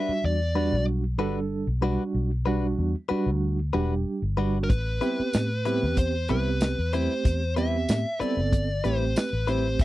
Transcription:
0.00 0.12 G3 medium
0.00 0.39 G3 medium
0.00 0.12 D4 medium
0.00 0.39 D4 medium
0.00 0.11 F#4 medium
0.00 0.39 F#4 medium
0.00 0.11 B4 medium
0.00 0.25 E5 medium
0.09 muted fingered electric bass stroke soft
0.24 0.74 E2 medium
0.24 0.84 D5 medium
0.55 1.03 G3 medium
0.55 0.76 G3 medium
0.55 1.03 D4 medium
0.55 0.76 D4 medium
0.55 0.75 F#4 medium
0.55 1.03 F#4 medium
0.55 0.75 B4 medium
0.72 1.19 B1 medium
1.18 1.64 G1 medium
1.18 1.66 G3 medium
1.18 1.40 G3 medium
1.18 1.66 D4 medium
1.18 1.39 D4 medium
1.18 1.39 F#4 medium
1.18 1.66 A4 loud
1.18 1.39 B4 medium
1.67 1.96 B1 medium
1.81 2.30 G3 medium
1.81 2.03 G3 medium
1.81 2.30 D4 medium
1.81 2.03 D4 medium
1.81 2.30 F#4 medium
1.81 2.03 F#4 medium
1.81 2.02 B4 medium
2.14 2.75 B1 medium
2.46 2.94 G3 medium
2.46 2.67 G3 medium
2.46 2.67 D4 medium
2.46 2.94 D4 medium
2.46 2.66 F#4 medium
2.46 2.95 F#4 loud
2.46 2.66 B4 medium
2.79 2.93 E2 medium
3.09 3.58 G3 medium
3.09 3.30 G3 medium
3.09 3.30 D4 medium
3.09 3.58 D4 medium
3.09 3.30 F#4 medium
3.09 3.58 F#4 medium
3.09 3.29 B4 medium
3.09 muted fingered electric bass stroke soft
3.26 3.70 D2 medium
3.73 4.03 E1 loud
3.73 4.21 G3 medium
3.73 3.94 G3 medium
3.73 4.21 D4 medium
3.73 3.94 D4 medium
3.73 3.94 F#4 medium
3.73 4.22 G4 medium
3.73 3.93 B4 medium
4.22 4.66 G1 medium
4.37 4.70 G3 medium
4.37 4.58 G3 medium
4.37 4.70 D4 medium
4.37 4.58 D4 medium
4.37 4.58 F#4 medium
4.37 4.70 F#4 medium
4.37 4.57 B4 medium
4.64 4.70 A#4 medium
4.70 4.99 A1 medium
4.70 5.65 B4 medium
4.70 kick loud
4.70 closed hi-hat medium
5.01 5.22 G3 medium
5.01 5.49 B3 medium
5.01 5.49 C4 medium
5.01 5.22 C4 medium
5.01 5.21 E4 medium
5.01 5.49 G4 medium
5.01 5.21 B4 medium
5.01 closed hi-hat soft
5.19 muted fingered electric bass stroke soft
5.33 5.84 A2 medium
5.33 snare medium
5.33 closed hi-hat medium
5.33 tambourine medium
5.65 5.86 G3 medium
5.65 6.13 B3 medium
5.65 6.13 C4 medium
5.65 5.85 C4 medium
5.65 5.85 E4 medium
5.65 6.14 G4 medium
5.65 5.85 B4 medium
5.65 5.98 B4 medium
5.65 closed hi-hat medium
5.83 6.32 E2 medium
5.97 6.30 C5 medium
5.97 kick medium
5.97 closed hi-hat medium
6.28 6.74 C2 loud
6.28 6.50 G3 medium
6.28 6.77 B3 medium
6.28 6.77 C4 medium
6.28 6.49 C4 medium
6.28 6.49 E4 medium
6.28 6.77 G4 medium
6.28 6.49 B4 medium
6.28 6.93 B4 medium
6.28 closed hi-hat medium
6.61 snare loud
6.61 closed hi-hat medium
6.61 tambourine loud
6.79 7.07 E2 medium
6.93 7.14 G3 medium
6.93 7.41 A3 medium
6.93 7.41 C4 medium
6.93 7.13 C4 medium
6.93 7.13 E4 medium
6.93 7.41 G4 medium
6.93 7.13 B4 medium
6.93 7.53 C5 medium
6.93 closed hi-hat medium
7.25 7.85 E2 medium
7.25 kick loud
7.25 closed hi-hat medium
7.56 7.77 G3 medium
7.56 8.04 B3 medium
7.56 7.77 C4 medium
7.56 8.04 C4 medium
7.56 7.76 E4 medium
7.56 8.04 G4 medium
7.56 7.76 B4 medium
7.56 8.20 E5 loud
7.56 closed hi-hat medium
7.89 8.04 A2 loud
7.89 snare loud
7.89 closed hi-hat medium
7.89 tambourine loud
8.20 8.41 G3 medium
8.20 8.68 B3 medium
8.20 8.68 C4 medium
8.20 8.40 C4 medium
8.20 8.40 E4 medium
8.20 8.68 A4 medium
8.20 8.40 B4 medium
8.20 8.86 D5 medium
8.20 muted fingered electric bass stroke soft
8.20 closed hi-hat medium
8.37 8.80 G1 medium
8.53 kick medium
8.53 closed hi-hat medium
8.84 9.13 A1 medium
8.84 9.04 G3 medium
8.84 9.31 A3 medium
8.84 9.31 C4 medium
8.84 9.04 C4 medium
8.84 9.04 E4 medium
8.84 9.32 G4 medium
8.84 9.03 B4 medium
8.84 9.15 C5 medium
8.84 closed hi-hat medium
9.16 9.49 B4 medium
9.16 snare loud
9.16 closed hi-hat medium
9.16 tambourine loud
9.33 9.76 A1 medium
9.47 9.68 G3 medium
9.47 9.80 A3 medium
9.47 9.80 C4 medium
9.47 9.68 C4 medium
9.47 9.67 E4 medium
9.47 9.80 G4 medium
9.47 9.67 B4 medium
9.47 9.82 C5 medium
9.47 closed hi-hat medium
9.79 9.85 E1 loud
9.79 9.85 E5 medium
9.79 kick loud
9.79 closed hi-hat medium

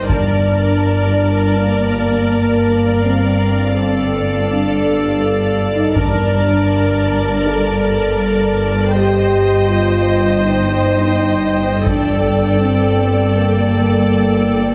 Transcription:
0.09 5.93 G1 soft
0.09 5.93 G2 soft
0.09 1.54 D4 medium
0.09 3.74 A#4 soft
0.09 5.93 D5 soft
0.09 3.01 A5 soft
0.09 taiko soft
1.57 3.04 A#3 medium
3.05 4.48 C4 medium
3.05 5.94 F5 soft
3.78 5.98 A4 soft
4.51 5.23 D4 medium
5.74 5.96 D#4 medium
5.96 11.83 G1 soft
5.96 11.83 G2 medium
5.96 7.46 D4 medium
5.96 8.89 A#4 soft
5.96 8.89 D5 soft
5.96 8.89 A5 soft
5.96 taiko soft
7.47 8.94 A4 medium
8.92 9.66 G4 medium
8.92 11.83 C5 soft
8.92 11.87 D#5 medium
8.92 14.75 G5 medium
9.67 10.40 F4 medium
10.40 11.12 D#4 medium
11.14 11.62 D#4 medium
11.86 14.75 G1 soft
11.86 14.75 G2 medium
11.86 12.56 D4 medium
11.86 14.75 A4 soft
11.86 14.75 D5 soft
11.86 taiko soft
12.60 13.33 C4 medium
13.35 14.75 A#3 medium

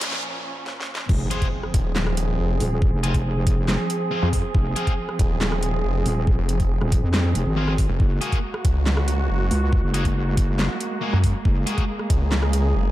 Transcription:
0.00 1.06 A#2 medium
0.00 1.06 F3 medium
0.00 1.06 C#4 medium
0.00 snare loud
0.00 closed hi-hat medium
0.00 riser medium
0.12 snare loud
0.66 snare medium
0.80 snare medium
0.95 snare loud
1.09 1.29 F1 loud
1.09 7.96 F3 medium
1.09 7.96 C4 medium
1.09 7.96 G#4 medium
1.09 kick loud
1.09 crash loud
1.09 impact medium
1.31 1.46 C4 medium
1.31 1.46 F4 medium
1.31 1.46 G#4 medium
1.31 closed hi-hat medium
1.42 kick medium
1.42 closed hi-hat soft
1.63 cross-stick medium
1.74 2.37 D#1 medium
1.74 kick loud
1.74 closed hi-hat medium
1.96 snare loud
1.96 clap medium
2.07 cross-stick medium
2.17 closed hi-hat medium
2.39 2.59 F1 loud
2.60 2.91 D#1 medium
2.60 open hi-hat medium
2.82 kick loud
2.93 3.77 F1 loud
3.03 3.13 C4 medium
3.03 3.13 F4 medium
3.03 3.13 G#4 medium
3.03 closed hi-hat medium
3.14 kick medium
3.14 closed hi-hat soft
3.47 kick loud
3.47 closed hi-hat medium
3.68 snare loud
3.68 clap medium
3.90 closed hi-hat medium
4.11 4.27 C4 medium
4.11 4.27 F4 medium
4.11 4.27 G#4 medium
4.22 4.42 F2 loud
4.33 kick medium
4.33 open hi-hat medium
4.55 4.74 F1 loud
4.55 kick loud
4.76 4.91 C4 medium
4.76 4.91 F4 medium
4.76 4.91 G#4 medium
4.76 closed hi-hat medium
4.87 kick medium
4.87 closed hi-hat soft
5.09 cross-stick medium
5.19 5.82 D#1 loud
5.19 kick loud
5.19 closed hi-hat medium
5.41 snare loud
5.41 clap medium
5.52 cross-stick medium
5.63 closed hi-hat medium
5.84 6.04 F1 loud
6.06 6.36 D#1 loud
6.06 open hi-hat medium
6.27 kick loud
6.38 6.80 F1 loud
6.49 closed hi-hat medium
6.60 kick medium
6.60 closed hi-hat soft
6.81 7.01 D#1 loud
6.81 cross-stick medium
6.92 kick loud
6.92 closed hi-hat medium
7.03 7.33 F2 medium
7.14 snare loud
7.14 clap medium
7.35 7.44 F1 medium
7.35 closed hi-hat medium
7.46 7.88 G#1 medium
7.56 7.72 C4 medium
7.56 7.72 F4 medium
7.56 7.72 G#4 medium
7.68 cross-stick medium
7.78 kick medium
7.78 open hi-hat medium
7.89 7.98 F1 loud
8.00 8.20 F#1 loud
8.00 12.91 G#3 medium
8.00 12.91 A#3 medium
8.00 11.42 F#4 medium
8.00 kick loud
8.21 8.37 A#3 medium
8.21 8.37 F#4 medium
8.21 8.37 G#4 medium
8.21 closed hi-hat medium
8.32 kick medium
8.32 closed hi-hat soft
8.54 cross-stick medium
8.65 9.28 C#2 loud
8.65 kick loud
8.65 closed hi-hat medium
8.86 snare loud
8.86 clap medium
8.97 cross-stick medium
9.08 closed hi-hat medium
9.29 9.49 F#1 loud
9.51 9.82 C#2 loud
9.51 open hi-hat loud
9.73 kick loud
9.83 10.68 F#1 loud
9.94 10.04 A#3 medium
9.94 10.04 F#4 medium
9.94 10.04 G#4 medium
9.94 closed hi-hat medium
10.05 kick medium
10.05 closed hi-hat soft
10.37 kick loud
10.37 closed hi-hat medium
10.59 snare loud
10.59 clap medium
10.80 closed hi-hat medium
11.02 11.17 A#3 medium
11.02 11.17 F#4 medium
11.02 11.17 G#4 medium
11.13 11.33 F#2 loud
11.24 kick medium
11.24 open hi-hat loud
11.45 11.65 F#1 loud
11.45 12.91 G#4 medium
11.45 kick loud
11.66 11.82 A#3 medium
11.66 11.82 F#4 medium
11.66 11.82 G#4 medium
11.66 closed hi-hat medium
11.78 kick medium
11.78 closed hi-hat soft
11.99 cross-stick medium
12.10 12.73 C#2 loud
12.10 kick loud
12.10 closed hi-hat medium
12.32 snare loud
12.32 clap medium
12.43 cross-stick medium
12.53 closed hi-hat medium
12.75 12.91 F#1 loud

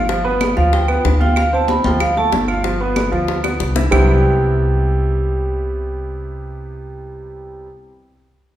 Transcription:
0.00 0.51 G1 medium
0.09 0.22 F3 medium
0.09 0.22 F4 medium
0.09 high bongo medium
0.09 high conga soft
0.25 0.51 B3 medium
0.25 0.51 B4 medium
0.25 high conga soft
0.41 high bongo medium
0.41 high conga medium
0.41 claves medium
0.57 1.01 D2 medium
0.57 0.83 F3 medium
0.57 0.83 F4 medium
0.57 0.72 F5 medium
0.57 high bongo soft
0.57 high conga soft
0.73 1.03 G5 medium
0.73 high bongo medium
0.73 high conga soft
0.88 1.15 B3 medium
0.88 1.15 B4 medium
0.88 high bongo soft
0.88 high conga soft
0.88 claves medium
1.05 1.79 D2 medium
1.05 high bongo medium
1.05 low bongo medium
1.05 high conga soft
1.20 1.47 F4 medium
1.20 1.47 F5 medium
1.20 1.37 G5 medium
1.20 high bongo soft
1.20 high conga medium
1.36 1.53 F5 medium
1.36 high bongo medium
1.36 high conga soft
1.36 claves medium
1.53 1.79 C4 medium
1.53 1.79 C5 medium
1.53 1.69 A5 medium
1.53 high conga soft
1.68 1.85 B5 medium
1.68 high bongo medium
1.68 high conga medium
1.84 2.29 D2 medium
1.84 2.11 F3 medium
1.84 2.11 F4 medium
1.84 2.00 G5 medium
1.84 high conga loud
2.00 2.16 F5 medium
2.00 high bongo medium
2.00 high conga soft
2.00 claves medium
2.16 2.43 A3 medium
2.16 2.43 A4 medium
2.16 2.27 A5 loud
2.16 high conga soft
2.32 3.07 G1 medium
2.32 high bongo medium
2.32 low bongo medium
2.32 high conga medium
2.48 2.61 F4 medium
2.48 2.61 F5 medium
2.48 claves medium
2.64 2.77 F3 medium
2.64 2.77 F4 medium
2.64 high bongo medium
2.64 high conga soft
2.80 3.07 B3 medium
2.80 3.07 B4 medium
2.80 high conga soft
2.96 high bongo medium
2.96 high conga medium
2.96 claves medium
3.11 3.57 D2 medium
3.11 3.38 F3 medium
3.11 3.38 F4 medium
3.11 high bongo soft
3.11 high conga soft
3.28 high bongo medium
3.28 high conga soft
3.43 3.70 B3 medium
3.43 3.70 B4 medium
3.43 high bongo medium
3.43 high conga soft
3.43 claves medium
3.60 3.88 C2 medium
3.60 high bongo medium
3.60 high conga soft
3.76 3.89 E4 medium
3.76 3.89 E5 medium
3.76 low bongo medium
3.76 high conga medium
3.91 7.67 C2 medium
3.91 7.66 C3 medium
3.91 7.66 G3 medium
3.91 7.66 B3 medium
3.91 7.66 C4 medium
3.91 7.67 E4 medium
3.91 7.67 G4 medium
3.91 low bongo medium
3.91 low conga medium
3.91 claves loud

